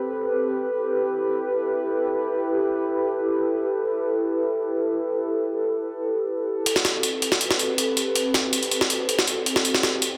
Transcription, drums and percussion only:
6.66 closed hi-hat medium
6.76 snare soft
6.85 snare medium
6.85 closed hi-hat medium
7.03 closed hi-hat medium
7.22 closed hi-hat medium
7.32 snare soft
7.41 closed hi-hat medium
7.51 snare medium
7.59 closed hi-hat medium
7.78 closed hi-hat medium
7.97 closed hi-hat medium
8.16 closed hi-hat medium
8.34 snare soft
8.34 closed hi-hat medium
8.53 closed hi-hat medium
8.63 closed hi-hat soft
8.71 closed hi-hat medium
8.81 snare soft
8.90 closed hi-hat medium
9.09 closed hi-hat medium
9.19 snare medium
9.28 closed hi-hat medium
9.46 closed hi-hat medium
9.56 snare soft
9.65 closed hi-hat medium
9.75 snare soft
9.83 snare medium
9.83 closed hi-hat medium
10.02 closed hi-hat medium

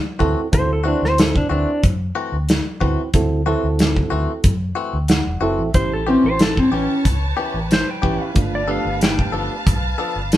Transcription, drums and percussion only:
0.20 kick medium
0.53 kick loud
0.53 closed hi-hat medium
1.05 snare soft
1.18 snare loud
1.18 closed hi-hat medium
1.36 kick medium
1.83 kick loud
1.83 closed hi-hat medium
2.49 snare loud
2.49 closed hi-hat medium
2.81 kick medium
3.14 kick loud
3.14 closed hi-hat medium
3.79 snare loud
3.79 closed hi-hat medium
3.96 kick medium
4.44 kick loud
4.44 closed hi-hat medium
5.08 snare loud
5.08 closed hi-hat medium
5.74 kick loud
5.74 closed hi-hat medium
6.39 snare loud
6.39 closed hi-hat medium
6.57 kick medium
7.05 kick loud
7.05 closed hi-hat medium
7.71 snare loud
7.71 closed hi-hat medium
8.03 kick medium
8.36 kick loud
8.36 closed hi-hat medium
9.01 snare loud
9.01 closed hi-hat medium
9.19 kick medium
9.67 kick loud
9.67 closed hi-hat medium
10.32 snare loud
10.32 closed hi-hat medium

